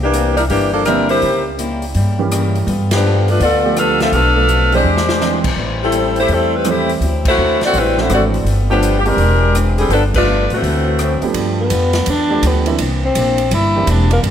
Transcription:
Already playing: C2
0.02 E3 A#3 D4 G4
0.14 C3 E3 A#3 D4, closed hi-hat
0.36 G3 D4 E4 A#4, open hi-hat
0.49 G1 C3 E3 A#3 D4 G4, open hi-hat
0.73 F3 A#3 D4 A4
0.85 C3 D3 E3 G3 A#3 C4 D4 E4 A#4, cross-stick, closed hi-hat
1.09 A#3 E4 G4 C5, open hi-hat
1.22 C#2 C#3 G3 A#3 E4, open hi-hat
1.58 C#3 G3 A#3 E4, closed hi-hat
1.82 open hi-hat
1.94 G2 C#3 G3 A#3 E4, open hi-hat
2.19 E3 G3 A#3 C#4 G4
2.31 C#3 G3 A#3 E4, cross-stick, closed hi-hat
2.55 open hi-hat
2.67 G2 G3 B3 F4 A4, open hi-hat
2.91 F3 B3 D4 G4, snare, ride
3.04 G3 B3 F4 A4
3.28 A3 D4 F4 B4, open hi-hat
3.40 D2 G3 B3 F4 A4 D5, open hi-hat
3.65 F3 A3 B3 D4 G4
3.77 G3 B3 D4 F4 A4 B4 F5, cross-stick, closed hi-hat
4.00 C4 F4 A4 E5, snare, open hi-hat
4.12 B1 B2 F3 A3 D4 A4 B4 F5, open hi-hat
4.36 F3 A3 B3 D4 A4
4.49 B2 F3 A3 D4, closed hi-hat
4.72 E3 G#3 C4 D4 G4 C5, open hi-hat
4.84 E2 E3 C4 D4 G#4
4.97 snare
5.09 snare
5.21 E3 G#3 C4 D4 G4 G#4, snare
5.44 A#1, kick, crash
5.56 A1 A2 G3 C4 E4
5.83 G3 C4 E4 A4
5.92 A2 G3 C4 E4, closed hi-hat
6.16 A3 E4 G4 C5, open hi-hat
6.28 E2 A2 G3 C4 E4 A4, open hi-hat
6.33 G3 C4 E4
6.56 G3 C4 E4 B4
6.65 A2 E3 G3 A3 C4 E4 G4, cross-stick, closed hi-hat
6.69 A3 E4 C5
6.89 open hi-hat
7.00 D2 D3 F#3 C4 E4, open hi-hat
7.25 A3 E4 F#4 C5, kick, crash
7.37 D#2 D3 F#3 C4 E4
7.61 C4 A4 D5, snare, open hi-hat
7.66 F#4
7.74 A1 D3 F#3 C4 E4 B4, open hi-hat
7.78 G3 C4
7.98 E3 A3 C4 D4 E4 F#4 C5, snare
8.09 G#1 D3 F#3 C4 E4, cross-stick, closed hi-hat
8.13 C4 F#4 A4 D5
8.34 open hi-hat
8.44 G1 G3 B3, open hi-hat
8.49 F4 A4
8.70 F3 A3 B3 D4 G4
8.83 G3 B3 F4 A4, closed hi-hat
8.99 G4
9.06 E3 G#3 C4 D4 G4 A#4, open hi-hat
9.17 E1 E3 C4 D4, open hi-hat
9.21 G#4
9.55 E3 C4 D4 G#4, cross-stick, closed hi-hat
9.78 D3 G3 C4 G#4, open hi-hat
9.89 G1 F3 G3 B3 D4 F4 A4, open hi-hat
9.94 A4
10.14 F3 A3 B3 D4 F4 G4 B4, kick, crash
10.28 G3 B3 F4 A4
10.50 A2 E3 F#4, open hi-hat
10.54 A3 C4
10.62 D2 D3 F#3 C4 E4, open hi-hat
10.99 D3 F#3 C4 E4, cross-stick, closed hi-hat
11.22 F3 A3 B3 D4 G4, muted upright bass stroke, open hi-hat
11.34 G2 G3 B3 F4 A4, ride
11.60 B3
11.70 F2 G3 B3 F4 A4, hi-hat pedal, ride
11.93 snare, ride
12.06 E2 G3 B3 F4 A4, ride
12.10 D4
12.30 F3 A3 B3 D4 G4
12.42 D2 G3 B3 F4 A4, hi-hat pedal, ride
12.47 B3
12.66 E3 G3 A#3 C4 D4 E4, ride
12.78 C2 C3 E3 A#3 D4, ride
13.05 C4
13.15 A#1 C3 E3 A#3 D4, hi-hat pedal, ride
13.38 ride
13.51 G1 C3 E3 A#3 D4 E4, ride
13.76 E3 A#3 C4 D4 G4
13.87 E1 C3 E3 A#3 D4, hi-hat pedal, ride
14.11 A#3, ride
14.23 G1 G3 B3 F4 A4, ride

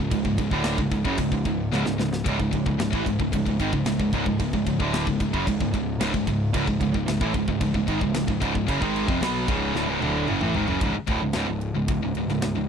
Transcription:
0.00 C#1 C#2 G#2
0.11 C#1 C#2 G#2, kick, crash
0.25 C#1 C#2 G#2, kick
0.38 C#1 C#2 G#2, kick, crash
0.51 D1 D2 A2 D3, kick
0.64 snare, crash
0.78 C#1 C#2 G#2, kick
0.91 C#1 C#2 G#2, kick, crash
1.04 F#1 F#2 C#3, kick
1.18 C#1 C#2 G#2, kick, crash
1.31 C#1 C#2 G#2, kick
1.45 C#1 C#2 G#2, kick, crash
1.72 C#1 C#2 G#2, snare
1.85 C#1 C#2 G#2, snare
1.98 C#1 C#2 G#2, snare
2.13 snare
2.24 C#1 C#2 G#2, kick, crash
2.39 C#1 C#2 G#2, kick
2.51 C#1 C#2 G#2, kick, crash
2.65 C#1 C#2 G#2, kick
2.79 C#1 C#2 G#2, snare, crash
2.90 A1 A2 E3, kick
3.04 C#1 C#2 G#2, kick, crash
3.19 C#1 C#2 G#2, kick
3.32 C#1 C#2 G#2, kick, crash
3.45 C#1 C#2 G#2, kick
3.60 G#1 G#2 D#3, kick, crash
3.73 C#1 C#2 G#2, kick
3.86 C#1 C#2 G#2, snare, crash
4.00 C#1 C#2 G#2, kick
4.13 C#1 C#2 G#2, kick, crash
4.26 C#1 C#2 G#2, kick
4.40 C#1 C#2 G#2, kick, crash
4.53 C#1 C#2 G#2, kick
4.66 C#1 C#2 G#2, kick, crash
4.79 D1 D2 A2 D3, kick
4.94 snare, crash
5.07 C#1 C#2 G#2, kick
5.20 C#1 C#2 G#2, kick, crash
5.33 F#1 F#2 C#3, kick
5.47 C#1 C#2 G#2, kick, crash
5.60 C#1 C#2 G#2, kick
5.74 C#1 C#2 G#2, kick, crash
6.00 C#1 C#2 G#2, snare, crash
6.14 C#1 C#2 G#2, kick
6.27 C#1 C#2 G#2, kick, crash
6.54 C#1 C#2 G#2, kick, crash
6.67 C#1 C#2 G#2, kick
6.80 C#1 C#2 G#2, kick, crash
6.94 C#1 C#2 G#2, kick
7.07 C#1 C#2 G#2, snare, crash
7.21 A1 A2 E3, kick
7.34 C#1 C#2 G#2, kick, crash
7.48 C#1 C#2 G#2, kick
7.61 C#1 C#2 G#2, kick, crash
7.65 C#2
7.74 C#1 C#2 G#2, kick
7.87 G#1 G#2 D#3, kick, crash
8.01 C#1 C#2 G#2, kick
8.14 C#1 C#2 G#2, snare, crash
8.27 C#1 C#2 G#2, kick
8.40 C#1 C#2 G#2, kick, crash
8.54 C#1 C#2 G#2, kick
8.66 F#1 F#2 C#3, kick, crash
8.80 G#1 G#2 D#3 G#3, kick
8.96 crash
9.07 F1 F2 C3, kick
9.20 B1 B2 F#3 B3, snare, crash
9.47 C#1 C#2 G#2 C#3, kick, crash
9.73 D1 D2 A2, snare
9.87 C#1 C#2 G#2
10.00 D1 D2 A2 D3, high tom
10.27 F#1 F#2 C#3, mid tom
10.41 A1 A2 E3, mid tom
10.54 G#1 G#2 D#3, floor tom
10.68 F#1 F#2 C#3, floor tom
10.81 C#1 C#2 G#2, kick, ride
10.95 muted distorted electric guitar stroke, muted picked electric bass stroke
11.07 D1 D2 A2, kick, ride
11.21 C#1 C#2 G#2
11.33 C#1 C#2 G#2, snare, ride
11.47 C#1 C#2 G#2
11.61 ride
11.75 C#1 C#2 G#2
11.88 C#1 C#2 G#2, kick, ride
12.02 C#1 C#2 G#2
12.14 C#1 C#2 G#2, ride
12.28 C#1 C#2 G#2, snare
12.42 C#1 C#2 G#2, snare, ride
12.55 C#1 C#2 G#2

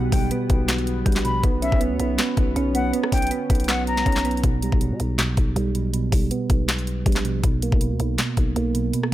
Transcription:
Already playing: B1 B2 D3 G3 B3 F#4
0.12 B1 G3 G5, kick, open hi-hat
0.31 B3, closed hi-hat
0.50 B1, kick, closed hi-hat
0.69 snare, clap, closed hi-hat
0.78 closed hi-hat
0.87 closed hi-hat
1.05 A#1 G3, kick, closed hi-hat
1.12 snare, closed hi-hat
1.16 clap, closed hi-hat
1.25 B2 B5, closed hi-hat
1.43 B1 B3 C#4, kick, closed hi-hat
1.62 C#4 E5, closed hi-hat
1.72 B1, kick
1.80 B3, closed hi-hat
1.91 D2
1.99 B1 B3, closed hi-hat
2.18 B3, snare, clap, closed hi-hat
2.37 B1, kick, closed hi-hat
2.56 B1 C#4, closed hi-hat
2.75 B3 F#5, closed hi-hat
2.93 B3, closed hi-hat
3.03 cross-stick
3.12 B1 C#4 G5, kick, closed hi-hat, open hi-hat
3.17 closed hi-hat
3.22 closed hi-hat
3.27 closed hi-hat
3.31 B3, closed hi-hat
3.50 B1 B3, kick, closed hi-hat
3.55 closed hi-hat
3.60 closed hi-hat
3.64 B3, closed hi-hat
3.69 F#5, snare, clap, closed hi-hat
3.87 A#5, closed hi-hat
3.97 snare
4.06 B1 C#4, kick, closed hi-hat
4.12 snare, closed hi-hat
4.16 clap, closed hi-hat
4.25 B3, closed hi-hat
4.31 closed hi-hat
4.37 closed hi-hat
4.44 B1 B2, kick, closed hi-hat
4.62 G3, closed hi-hat
4.72 B1, kick
4.81 B2, closed hi-hat
4.91 B2
5.00 B1 B2, closed hi-hat
5.18 B2, snare, clap, closed hi-hat
5.37 B1, kick, closed hi-hat
5.56 B1 G3, closed hi-hat
5.75 B2, closed hi-hat
5.94 B2, closed hi-hat
6.12 B1 G3, kick, open hi-hat
6.31 B3, closed hi-hat
6.50 B1, kick, closed hi-hat
6.69 snare, clap, closed hi-hat
6.79 closed hi-hat
6.87 closed hi-hat
7.06 A#1 G3, kick, closed hi-hat
7.12 snare, closed hi-hat
7.16 clap, closed hi-hat
7.24 B2, closed hi-hat
7.44 B1 B2, kick, closed hi-hat
7.62 A#3, closed hi-hat
7.72 B1, kick
7.81 B2, closed hi-hat
7.91 D2
7.99 B1 B2, closed hi-hat
8.18 B2, snare, clap, closed hi-hat
8.37 B1, kick, closed hi-hat
8.56 B1 A#3, closed hi-hat
8.74 B2, closed hi-hat
8.93 B2, closed hi-hat
9.03 cross-stick

